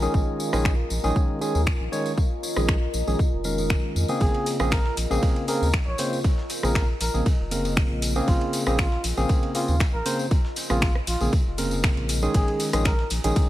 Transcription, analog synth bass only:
0.14 0.23 A#1 loud
0.53 0.84 A#1 medium
0.90 0.99 A#1 loud
1.04 1.12 A#1 loud
1.55 1.70 D#2 medium
1.80 1.88 A#1 loud
2.56 2.87 A#1 medium
2.94 3.02 A#1 loud
3.07 3.15 A#1 loud
3.33 3.76 F1 medium
3.95 4.04 F2 medium
4.21 4.30 A#1 loud
4.60 4.90 A#1 medium
4.97 5.06 A#1 loud
5.11 5.18 A#1 loud
5.62 5.77 D#2 medium
5.87 5.95 A#1 loud
6.63 6.94 A#1 medium
7.01 7.09 A#1 loud
7.14 7.22 A#1 loud
7.39 7.83 F1 medium
7.90 8.21 A#1 loud
8.28 8.36 A#1 loud
8.67 8.97 A#1 medium
9.04 9.13 A#1 loud
9.17 9.25 A#1 loud
9.68 9.84 D#2 medium
9.94 10.01 A#1 loud
10.70 11.00 A#1 medium
11.07 11.16 A#1 loud
11.21 11.28 A#1 loud
11.46 11.89 F1 medium
11.97 12.28 A#1 medium
12.34 12.43 A#1 loud
12.73 13.04 A#1 medium
13.11 13.19 A#1 medium
13.24 13.32 A#1 loud

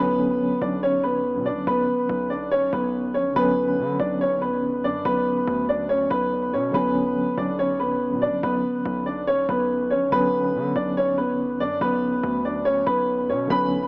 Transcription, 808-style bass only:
0.00 0.39 B1 loud
0.62 1.37 B1 loud
1.35 1.53 B2 loud
1.51 1.66 B1 loud
1.67 1.87 B1 loud
2.09 2.70 B1 loud
2.73 3.16 B1 loud
3.15 3.27 A#1 loud
3.26 3.36 B1 loud
3.36 3.80 B1 loud
3.78 3.98 D3 loud
4.00 4.86 B1 loud
4.84 5.04 F#2 loud
5.05 5.46 B1 loud
5.47 6.08 D2 loud
6.11 6.55 B1 loud
6.53 6.73 B2 loud
6.74 7.15 B1 loud
7.38 8.13 B1 loud
8.12 8.29 B2 loud
8.27 8.42 B1 loud
8.43 8.63 B1 loud
8.85 9.46 B1 loud
9.49 9.93 B1 loud
9.91 10.03 A#1 loud
10.02 10.12 B1 loud
10.12 10.56 B1 loud
10.54 10.75 D3 loud
10.76 11.62 B1 loud
11.60 11.80 F#2 loud
11.81 12.22 B1 loud
12.23 12.84 D2 loud
12.87 13.31 B1 loud
13.29 13.49 B2 loud
13.50 13.88 B1 loud

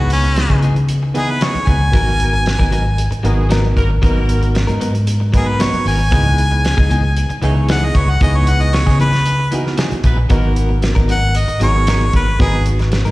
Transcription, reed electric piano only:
0.00 0.69 B3 medium
0.00 0.69 D#4 medium
0.00 0.69 E4 medium
0.00 0.69 G#4 medium
1.14 1.78 B3 medium
1.14 1.79 D#4 medium
1.14 1.79 E4 medium
1.14 1.79 G#4 medium
1.92 2.77 B3 medium
1.92 2.78 D#4 medium
1.92 2.78 F#4 medium
1.92 2.78 A#4 medium
3.24 3.88 B3 medium
3.24 3.88 D#4 medium
3.24 3.88 F#4 medium
3.24 3.88 A#4 medium
4.03 4.87 B3 medium
4.03 4.88 D#4 medium
4.03 4.88 F#4 medium
4.03 4.88 A#4 medium
5.34 5.97 B3 medium
5.34 5.98 D#4 medium
5.34 5.98 F#4 medium
5.34 5.98 B4 medium
6.11 6.96 B3 medium
6.11 6.96 D#4 medium
6.11 6.97 E4 medium
6.11 6.97 G#4 medium
7.43 8.06 B3 medium
7.43 8.07 D#4 medium
7.43 8.07 E4 medium
7.43 8.07 G#4 loud
8.21 9.06 B3 medium
8.21 9.06 D#4 medium
8.21 9.06 E4 medium
8.21 9.06 G#4 medium
9.52 10.16 B3 medium
9.52 10.16 D#4 medium
9.52 10.16 E4 medium
9.52 10.16 F#4 medium
10.30 11.15 B3 medium
10.30 11.15 D#4 medium
10.30 11.15 F#4 medium
10.30 11.15 A#4 medium
11.61 12.25 B3 medium
11.61 12.25 D#4 medium
11.61 12.25 F#4 medium
11.61 12.25 G#4 medium
12.39 13.11 B3 medium
12.39 13.11 D#4 medium
12.39 13.11 F#4 medium
12.39 13.11 B4 medium

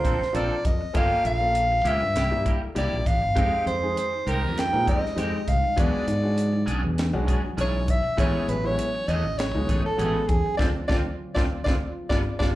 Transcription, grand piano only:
0.00 0.12 C4 medium
0.00 0.12 D4 medium
0.00 0.13 F4 medium
0.00 0.12 A#4 medium
0.19 0.27 F4 soft
0.19 0.27 C5 soft
0.33 0.57 C4 medium
0.33 0.57 D4 medium
0.33 0.57 F4 medium
0.33 0.58 A#4 medium
0.64 0.72 F4 soft
0.64 0.72 A#4 soft
0.93 1.29 A#3 medium
0.93 1.29 C#4 medium
0.93 1.29 F4 medium
0.93 1.29 A4 medium
1.40 1.63 A#3 medium
1.40 1.63 C#4 medium
1.40 1.63 F4 medium
1.40 1.63 A4 medium
1.70 1.78 F4 soft
1.70 1.77 A#4 soft
2.31 2.54 A#3 medium
2.31 2.54 D4 medium
2.31 2.54 E4 medium
2.31 2.54 G4 medium
2.62 2.68 E4 soft
2.62 2.69 A4 soft
2.75 2.99 A#3 medium
2.75 2.99 D4 medium
2.75 2.99 E4 medium
2.75 2.99 G4 medium
3.35 3.71 G#3 medium
3.35 3.71 C4 medium
3.35 3.71 D#4 medium
3.35 3.71 G4 medium
3.83 4.05 G#3 medium
3.83 4.05 C4 medium
3.83 4.05 D#4 medium
3.83 4.05 G#4 medium
4.13 4.19 D#4 soft
4.13 4.20 G4 soft
4.73 4.95 G#3 medium
4.73 4.95 C4 medium
4.73 4.95 D#4 medium
4.73 4.95 A#4 medium
5.03 5.10 D#4 soft
5.03 5.10 G#4 soft
5.16 5.40 G#3 medium
5.16 5.40 C4 medium
5.16 5.40 D#4 medium
5.16 5.40 G4 medium
5.46 5.55 D#4 soft
5.46 5.55 G4 soft
5.76 6.12 G#3 medium
5.76 6.11 B3 medium
5.76 6.12 D4 medium
5.76 6.12 F#4 medium
6.22 6.45 G#3 medium
6.22 6.45 C#4 medium
6.22 6.46 D4 medium
6.22 6.46 F#4 medium
6.53 6.60 D4 soft
6.53 6.60 E4 soft
7.13 7.36 G#3 loud
7.13 7.36 C#4 loud
7.13 7.36 D4 loud
7.13 7.36 F#4 loud
7.43 7.50 D4 soft
7.43 7.51 F#4 soft
7.58 7.81 G#3 medium
7.58 7.82 C#4 medium
7.58 7.82 D4 medium
7.58 7.82 E4 medium
7.87 7.96 D4 soft
7.87 7.96 F#4 soft
8.17 8.52 G#3 medium
8.17 8.53 B3 medium
8.17 8.53 C#4 medium
8.17 8.53 E4 loud
8.64 8.87 G#3 medium
8.64 8.87 B3 medium
8.64 8.87 C#4 medium
8.64 8.87 E4 medium
8.94 9.01 C#4 soft
8.94 9.01 E4 soft
9.54 9.77 G#3 medium
9.54 9.77 B3 medium
9.54 9.77 C#4 medium
9.54 9.77 D#4 loud
9.84 9.91 C#4 soft
9.84 9.92 E4 soft
9.97 10.21 G#3 medium
9.97 10.22 B3 medium
9.97 10.22 C#4 medium
9.97 10.22 F#4 medium
10.28 10.36 C#4 soft
10.28 10.37 D#4 soft
10.58 10.69 C4 medium
10.58 10.69 D4 medium
10.58 10.69 F4 medium
10.89 10.99 C4 medium
10.89 10.99 D4 medium
10.89 10.99 F4 loud
11.35 11.44 C4 medium
11.35 11.44 D4 medium
11.35 11.44 F4 loud
11.65 11.74 C4 medium
11.65 11.74 D4 medium
11.65 11.74 F4 medium
12.09 12.20 D4 medium
12.09 12.20 F4 medium
12.09 12.20 G4 medium
12.40 12.50 D4 medium
12.40 12.50 F4 medium
12.40 12.50 G4 medium

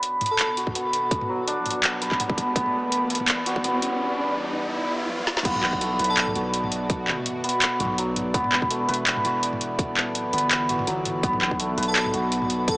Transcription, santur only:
0.00 0.75 B3 medium
0.00 1.47 D4 medium
0.00 0.57 F#4 medium
0.00 2.01 B4 medium
0.57 3.46 F#4 medium
0.75 2.19 B3 medium
1.29 2.61 F#3 medium
1.47 5.20 D4 loud
2.02 2.37 B4 medium
2.20 2.55 B3 medium
2.38 5.11 B4 medium
2.56 3.64 B3 loud
3.46 6.35 F#4 medium
3.64 5.45 B3 medium
5.45 5.63 B3 loud
5.63 7.43 B3 medium
5.81 8.70 A3 medium
5.99 8.73 B4 loud
6.35 7.80 F#4 medium
7.44 8.34 B3 medium
7.80 9.24 F#4 medium
7.98 8.39 F#3 medium
8.34 8.52 B3 loud
8.52 10.33 B3 medium
8.70 11.59 A3 medium
8.88 11.62 B4 loud
9.25 10.69 F#4 medium
10.33 11.23 B3 medium
10.69 12.13 F#4 medium
10.87 11.28 F#3 medium
11.23 11.41 B3 loud
11.41 12.77 B3 medium
11.59 12.77 A3 medium
11.77 12.77 B4 loud
12.13 12.77 F#4 medium

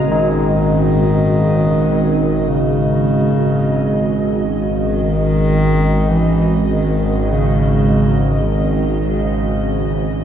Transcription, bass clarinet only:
0.08 2.50 D#3 loud
2.48 4.62 C#3 medium
4.88 6.11 D#3 loud
6.10 6.66 E3 loud
6.66 6.73 E3 medium
6.71 7.24 D#3 loud
7.24 7.32 D#3 medium
7.31 8.43 C#3 medium
8.42 8.49 E3 medium
8.47 9.37 D#3 medium

